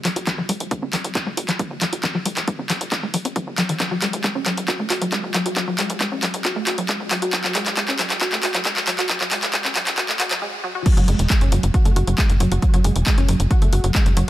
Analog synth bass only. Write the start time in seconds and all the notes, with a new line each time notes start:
0.05 F#1
0.16 F#1
0.38 F#1
0.49 F#1
0.60 E1
0.82 F#1
0.93 F#1
1.04 F#1
1.27 F#1
1.37 F#1
1.49 F#1
1.71 F#1
1.81 F#1
1.93 F#1
2.15 F#1
2.26 F#1
2.37 E1
2.59 F#1
2.70 F#1
2.81 F#1
3.03 F#1
3.14 F#1
3.25 F#1
3.47 F#1
3.58 F#1
3.69 F#1
3.91 F#1
4.02 F#1
4.13 E1
4.35 F#1
4.46 F#1
4.57 F#1
4.79 F#1
4.90 F#1
5.02 F#1
5.24 F#1
5.34 F#1
5.46 F#1
5.68 F#1
5.79 F#1
5.90 E1
6.12 F#1
6.23 F#1
6.34 F#1
6.56 F#1
6.67 F#1
6.78 F#1
7.00 F#1
7.11 F#1
7.22 F#1
7.44 F#1
7.55 F#1
7.66 E1
7.88 F#1
7.99 F#1
8.10 F#1
8.32 F#1
8.43 F#1
8.54 F#1
8.76 F#1
8.87 F#1
8.99 F#1
9.21 F#1
9.31 F#1
9.43 E1
9.65 F#1
9.76 F#1
9.87 F#1
10.09 F#1
10.20 F#1
10.31 F#1
10.97 F#1
11.08 F#1
11.19 E1
11.41 F#1
11.52 F#1
11.63 F#1
11.85 F#1
11.96 F#1
12.07 F#1
12.30 F#1
12.40 F#1
12.52 F#1
12.74 F#1
12.84 F#1
12.96 E1
13.18 F#1
13.29 F#1
13.40 F#1
13.62 F#1
13.73 F#1
13.84 F#1
14.06 F#1
14.17 F#1